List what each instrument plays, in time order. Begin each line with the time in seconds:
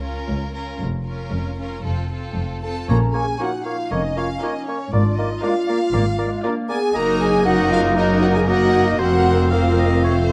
Already playing: cello section C#2, double bass section C#2
0.01 viola section C#4, violin section F4 A#4
0.27 double bass section C#2, cello section C#2
0.53 viola section C#4, violin section F4 A#4
0.79 double bass section F1, cello section F2
1.05 viola section C#4, violin section F4 A#4
1.32 double bass section F1, cello section F2
1.58 viola section C#4, violin section F4 A#4
1.84 double bass section F1, cello section F2, viola section C4, violin section F4 A4
2.10 viola section C4, violin section F4 A4
2.37 double bass section F1, cello section F2
2.63 viola section C4, violin section F4 A4 A5, french horn section A4, flute section A5
2.88 double bass section A#1, timpani A#2, cello section A#2, bassoon A#3, clarinet C#4, french horn section A#4, oboe C#5, violin section A#5, flute section A#5
3.14 bassoon A#3, french horn section G#4, oboe C#5, violin section G#5, flute section G#5
3.38 bassoon A#3, viola section C#4 F4, clarinet D#4, french horn section F#4, violin section A#4 F#5, oboe C#5, flute section F#5
3.65 bassoon A#3, french horn section F4, oboe C#5, violin section F5, flute section F5
3.91 double bass section F1, cello section F2, bassoon A#3, clarinet C#4, french horn section D#4, oboe C#5, violin section D#5, flute section D#5
4.16 bassoon A#3, french horn section F4, oboe C#5, violin section F5, flute section F5
4.41 bassoon A#3, viola section C#4 F4, french horn section D#4, violin section A#4 D#5, oboe C#5, flute section D#5
4.67 bassoon A#3, french horn section C#4, violin section C#5, oboe C#5, flute section C#5
4.92 double bass section G#1, cello section G#2, bassoon A#3, french horn section D4, clarinet F4, violin section D5, flute section D5, oboe D5
5.17 bassoon A#3, french horn section D#4, oboe D5, violin section D#5, flute section D#5
5.43 clarinet G#3, bassoon A#3, viola section D4 F4, french horn section F4, violin section A#4 F5, oboe D5, flute section F5
5.67 bassoon A#3, clarinet A#3, oboe D5
5.93 double bass section G#1, cello section G#2, bassoon A#3, clarinet A#3, oboe D5
6.18 clarinet G#3, bassoon A#3, oboe D5
6.43 bassoon A#3, clarinet A#3, viola section D4 F4, violin section A#4, oboe D5
6.69 bassoon A#3, clarinet B3, french horn section G#4, oboe D5, violin section G#5, flute section G#5
6.94 double bass section F#1, cello section F#2, bassoon A#3, clarinet A#3, viola section D#4 F#4, french horn section A#4, violin section A#4 A#5, oboe D#5, flute section A#5
7.19 french horn section G#4, flute section G#5, violin section G#5
7.45 bassoon A#3, clarinet D#4, viola section D#4 F#4, french horn section F#4, violin section A#4 F#5, oboe D#5, flute section F#5
7.70 french horn section F4, violin section F5, flute section F5
7.95 bassoon A#3, french horn section D#4, viola section D#4 F#4, violin section A#4 D#5, oboe D#5, flute section D#5
8.21 french horn section F#4, violin section F#5, flute section F#5
8.34 french horn section G#4, violin section G#5, flute section G#5
8.46 bassoon A#3, clarinet A#3, viola section D#4 F#4, french horn section F#4, violin section A#4 F#5, oboe D#5, flute section F#5
8.86 french horn section D#4, flute section D#5, violin section D#5
8.99 double bass section F1, cello section F2, bassoon A#3, clarinet C4, viola section C4 A#4, french horn section F#4, oboe C5, violin section C5 F#5, flute section F#5
9.51 bassoon A#3, viola section C4 A#4, french horn section F4, violin section C5 F5, oboe F5, flute section F5
9.78 oboe D#5
10.04 bassoon A3, viola section C4 A4, violin section C5, oboe C#5